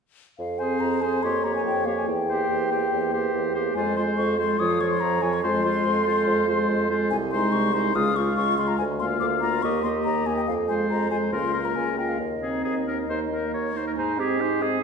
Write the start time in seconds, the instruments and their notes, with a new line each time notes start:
0.38 bassoon F2, flute F5
0.59 french horn C4, clarinet G#4, oboe C5, flute G#5
0.80 bassoon F2, flute A#5
1.02 french horn C4, clarinet G#4, oboe C5, flute G#5
1.23 bassoon F2, french horn A#3, clarinet G4, oboe C#5, flute C6
1.44 french horn A#3, clarinet G4, oboe C#5, flute A#5
1.55 flute G#5
1.65 bassoon F2, flute G5
1.85 french horn A#3, clarinet G4, oboe C#5, flute F5
1.97 flute G#5
2.07 bassoon E2, flute G5
2.28 french horn A#3, clarinet G4, oboe C5
2.50 bassoon E2
2.71 french horn A#3, clarinet G4, oboe C5
2.93 bassoon E2
3.13 french horn A#3, clarinet G4, oboe C5
3.34 bassoon E2
3.55 french horn A#3, clarinet G4, oboe C5
3.75 bassoon F2, french horn G#3, clarinet F4, oboe C5, flute G#5
3.96 french horn G#3, clarinet F4, oboe C5, flute C6
4.17 bassoon F2, flute C#6
4.38 french horn G#3, clarinet F4, oboe C5, flute C6
4.59 bassoon F2, french horn F3, clarinet F4, oboe C#5, flute D#6
4.80 french horn F3, clarinet F4, oboe C#5, flute C#6
4.91 flute C6
5.00 bassoon F2, flute A#5
5.22 french horn F3, clarinet F4, oboe C#5, flute G#5
5.33 flute C#6
5.43 bassoon F2, french horn G#3, clarinet F4, oboe C5, flute C6
5.64 french horn G#3, clarinet F4, oboe C5
5.86 bassoon F2
6.07 french horn G#3, clarinet F4, oboe C5
6.27 bassoon F2
6.48 french horn G#3, clarinet F4, oboe C5
6.69 bassoon F2
6.90 french horn G#3, clarinet F4, oboe C5
7.10 bassoon C2, flute G#5
7.32 french horn G#3, clarinet D#4, oboe C5, flute C6
7.52 bassoon C2, flute C#6
7.73 french horn G#3, clarinet D#4, oboe C5, flute C6
7.95 bassoon C#2, french horn G#3, clarinet F4, oboe F5, flute D#6
8.16 french horn G#3, clarinet F4, oboe F5, flute C#6
8.37 bassoon C#2, flute C#6
8.58 french horn G#3, clarinet F4, oboe F5, flute C6
8.68 flute A#5
8.78 bassoon D2, flute G#5
8.99 french horn A#3, clarinet F4, oboe F5, flute C6
9.20 bassoon D2, flute D6
9.41 french horn A#3, clarinet F4, oboe F5, flute A#5
9.62 bassoon D#2, french horn A#3, clarinet G4, oboe D#5, flute C#6
9.83 french horn A#3, clarinet G4, oboe D#5, flute C6
10.04 bassoon D#2, flute A#5
10.26 french horn A#3, clarinet G4, oboe D#5, flute G#5
10.37 flute G5
10.47 bassoon F2, flute F5
10.68 french horn G#3, clarinet F4, oboe C5, flute G#5
10.90 bassoon F2, flute A#5
11.11 french horn G#3, clarinet F4, oboe C5, flute G#5
11.32 bassoon C#2, french horn A#3, clarinet F4, oboe A#4, flute C6
11.53 french horn A#3, clarinet F4, oboe A#4
11.65 flute A#5
11.76 bassoon C#2, flute G#5
11.98 french horn A#3, clarinet F4, oboe A#4, flute G5
12.09 flute F5
12.19 bassoon D#2, flute D#5
12.42 french horn C4, clarinet D#4, oboe G#4
12.64 bassoon D#2, oboe G#4
12.87 french horn C4, clarinet D#4, oboe A#4
13.09 bassoon D#2, french horn A#3, clarinet D#4, oboe C5
13.31 french horn A#3, clarinet D#4, oboe A#4
13.54 bassoon D#2, oboe C#5
13.75 french horn A#3, clarinet D#4, oboe C5
13.87 oboe A#4
13.96 bassoon G#2, clarinet D#4, french horn D#4, oboe C5, flute G#5
14.18 french horn C4, clarinet G4, oboe G#4, flute D#5
14.40 french horn D#4, oboe C5, flute G#5
14.61 french horn C4, clarinet G#4, oboe G#4, flute D#5